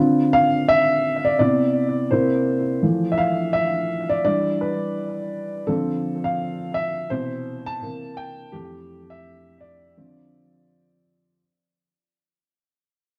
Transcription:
upright piano
Already playing: D3 C4 F4
0.33 F5
0.68 E5
1.25 D5
1.39 C3 B3 E4 D5
2.11 C3 A#3 E4 C5
2.83 E3 F3 A3
3.12 E5
3.18 F5
3.53 E5
4.09 D5
4.25 E3 G3 D4 D5
4.61 B4
5.67 D3 F3 C4 A4
6.24 F5
6.74 E5
7.10 B2 C3 E3 C5
7.66 A5
7.82 C3 E3 A#3
8.17 G5
8.52 F2 E3 A3 G4
9.10 E5
9.60 D5
9.97 D3 F3 C4

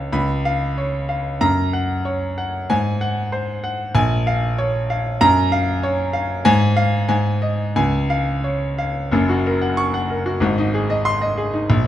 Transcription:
grand piano
Already playing: C#2 C#5 F5 G#5
0.13 C#2 B5
0.45 F5
0.78 C#5
1.09 F5
1.41 F#2 A#5
1.73 F#5
2.05 C#5
2.38 F#5
2.70 G#2 G#5
3.01 F#5
3.32 C5
3.64 F#5
3.95 A#1 G#5
4.27 F5
4.58 C#5
4.90 F5
5.21 F#2 A#5
5.52 F5
5.83 C#5
6.13 F5
6.45 G#2 G#5
6.77 F5
7.09 G#2 G#5
7.42 D#5
7.76 C#2 G#5
8.10 F5
8.44 C#5
8.78 F5
9.11 F#1 F#2
9.29 F#4
9.46 A#4
9.62 F#5
9.77 C#6
9.94 F#5
10.10 A#4
10.26 F#4
10.40 G#1 G#2
10.58 D#4
10.74 G#4
10.90 D#5
11.05 C6
11.22 D#5
11.37 G#4
11.53 D#4
11.70 A#1

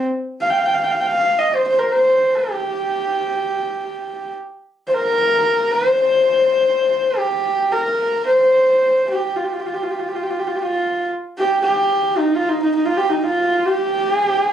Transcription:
horsehead fiddle
0.41 F5
0.50 G5
0.57 F5
0.65 G5
0.74 F5
0.84 G5
0.91 F5
0.99 G5
1.06 F5
1.38 D#5
1.54 C5
1.68 C5
1.78 A#4
1.92 C5
2.36 G4
4.87 C5
4.93 A#4
5.71 C5
7.17 G4
7.72 A#4
8.26 C5
9.10 G4
9.36 F4
9.44 G4
9.52 F4
9.59 G4
9.66 F4
9.74 G4
9.83 F4
9.91 G4
9.99 F4
10.08 G4
10.15 F4
10.22 G4
10.30 F4
10.39 G4
10.47 F4
10.55 G4
10.61 F4
11.38 G4
11.62 G4
12.18 D#4
12.35 F4
12.49 D#4
12.63 D#4
12.75 D#4
12.85 F4
12.97 G4
13.09 D#4
13.23 F4
13.65 G4
14.13 G#4
14.26 G4
14.40 G#4

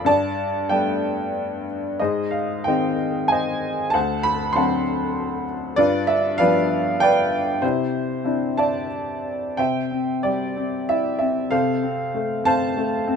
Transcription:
upright piano
0.05 G2 D5 A5
0.69 G3 A3 B3 B4 D5 G5
2.00 G#2 G#4 C5 D#5
2.31 F5
2.64 D#3 G#3 C4 C5 D#5 G5
3.28 C5 D#5 G#5
3.90 F#5 A5
3.94 D2 C5
4.23 B5
4.53 D3 F#3 C4 F#5 A5 C6
5.76 G2 F4 B4 D5
6.07 E5
6.38 F3 G3 B3 B4 D5 F5
7.00 B4 D5 G5
7.62 C3 E4 G4 C5
8.24 C4 D4 E4
8.58 D5 E5 A5
9.57 C3 C5 E5 G5
9.91 C4
10.23 G3 G4 D5
10.57 C4
10.89 E4 E5
11.19 C4 E5
11.51 C3 A4 C5 F5
11.83 C4
12.14 A3
12.44 C4 C5 F5 A5
12.77 A3
13.07 C4

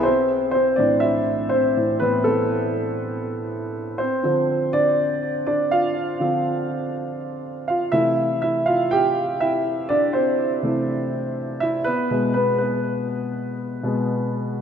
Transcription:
grand piano
0.03 C4 C5
0.51 C4 C5
0.76 A2 E3 C4 D4 D5
1.00 E4 E5
1.49 C5
1.53 C4
1.77 A2 E3 C4
2.00 A2 E3 B3 C4 B4
2.24 A3 A4
3.98 C4 C5
4.23 D3 F3 C4
4.73 D4 D5
5.47 D4 D5
5.71 F4 F5
6.20 D3 F3 C4
7.68 F4 F5
7.92 C3 E3 A3 E4 E5
8.42 E4 E5
8.66 F4 F5
8.91 G4 G5
9.40 E4 E5
9.89 D4 D5
10.13 C4 C5
10.62 C3 E3 A3
11.60 E4 E5
11.84 B3 B4
12.10 B2 G#3 B3
12.34 B3 B4
12.58 B3 B4
13.83 B2 G#3 B3

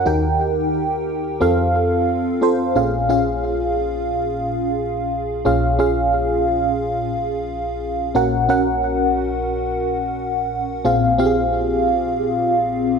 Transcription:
fm electric piano
0.06 D#2 D#3 D#4 G4 A#4 G5
1.41 F2 C4 F4 A4 F5
2.42 C4 F4 A4 C5
2.75 A#1 A#2 C#4 F4 G#4 F5
3.09 C#4 F4 G#4 F5
5.45 A#1 A#2 C#4 F4 G#4 F5
5.79 C#4 F4 G#4 F5
8.15 A#1 A#2 C#4 F#4 A#4 F#5
8.49 C#4 F#4 A#4 F#5
10.85 A#1 A#2 C4 F4 G#4 F5
11.18 C4 F4 G4 F5
11.26 G#4

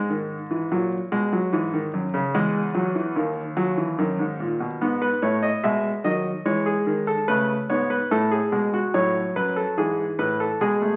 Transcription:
grand piano
Already playing: G#2
0.10 D#3
0.51 E3
0.71 A#2 F#3
1.12 B2 G#3
1.33 F#3
1.53 G#2 E3
1.73 D#3
1.94 F#2
2.14 C#3
2.34 E2 G#3
2.74 F#3
2.95 E3
3.16 D#2 D#3
3.57 F#3
3.77 E3
3.98 F#2 D#3
4.19 G#2
4.40 A#2
4.60 B2
4.81 G#2 B3
5.02 B4
5.22 A2 A3 C#5
5.43 D#5
5.64 B2 G#3 E5
6.04 D#3 F#3 D#5
6.45 E3 G#3 C#5
6.66 G#4
6.86 D#3
7.07 A4
7.28 C#3 A3 B4
7.70 G#2 B3 C#5
7.90 B4
8.11 A2 A3 A4
8.31 G#4
8.52 B2 G#3
8.74 F#4
8.94 A2 F#3 C#5
9.36 F#2 B4
9.56 A4
9.77 G#2 E3 G#4
10.19 A2 B4
10.40 A4
10.61 B2 G#3 G#4
10.82 A3

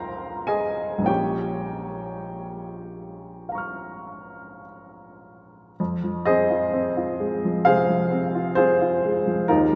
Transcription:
grand piano
Already playing: C#2 F3 C4 D#4 F4 A#4 C5 F5 G5 A#5 C6
0.47 G#4 D#5 G#5
0.98 A#1 F3 A#3
1.04 C#4 F4 G4 C#5 G5
3.49 F5 A#5
3.55 C#6 F6
5.80 F2
6.03 F3
6.25 C4 G#4 C5 D#5
6.50 F4
6.73 C4
6.97 F4
7.20 G#3
7.45 F3
7.65 C3 G#4 C5 F5
7.89 F3
8.12 C4
8.35 F4
8.55 C4 F4 G#4 C5
8.81 F4
9.05 G#3
9.27 F3
9.48 D#2 D#4 F4 A#4

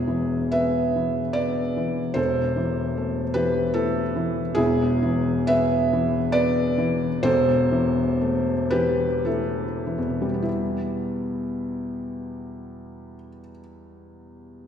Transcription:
felt piano
Already playing: E1 E2 E4 G#4
0.08 E3
0.52 B3 B4 E5
0.96 E3
1.33 B3 B4 D5
1.77 E3
2.14 E1 E2 A4 C5
2.56 E3
2.97 A3
3.34 E3 G4 B4
3.74 A3 E4 A4
4.16 E3
4.55 E1 E2 E4 G#4
5.02 E3
5.47 B3 B4 E5
5.93 E3
6.32 B3 B4 D5
6.78 E3
7.23 E1 E2 A4 C5
7.72 E3
8.21 A3
8.70 E3 G4 B4
9.25 A3 E4 A4
9.86 E3
9.98 E2
10.10 B2
10.22 G3
10.34 B3
10.42 E4

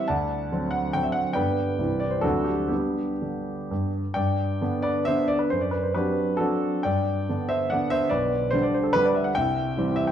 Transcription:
grand piano
0.08 D2 D5 F#5 A5
0.52 D3 F#3 C4
0.71 F#5
0.93 D3 F#3 C4 G5
1.03 E5
1.12 F#5
1.33 G2 D3 G3 B4 D5 G5
1.38 B3
1.79 C2 E3 G3 C4
2.00 D5
2.11 C5
2.21 D2 D3 F#3 C4 D4 F#4 A4
2.44 G4
2.55 F#4
2.68 G3 B3 D4 G4
3.22 D3
3.71 G2
4.14 G2 D5 G5
4.61 D3 B3 D4
4.82 B4 D5
5.05 D3 B3 D4 C5 E5
5.28 D5
5.39 B4
5.50 F#2 C5
5.61 D5
5.71 B4
5.83 C5
5.94 F#3 C4 D4 G4 B4
6.37 F#3 C4 D4 F#4 A4
6.83 G2 D5 G5
7.29 D3 B3 D4
7.49 C5 E5
7.70 D3 B3 D4 D5 F#5
7.90 C5 E5
8.10 B1 B4 D5
8.51 D3 G3 C5
8.55 D4
8.63 D5
8.74 C5
8.83 A4
8.93 D3 G3 D4 B4
9.05 D5
9.15 E5
9.24 F#5
9.35 C2 E5 G5
9.77 E3 G3 C4
9.96 E5
10.07 G5

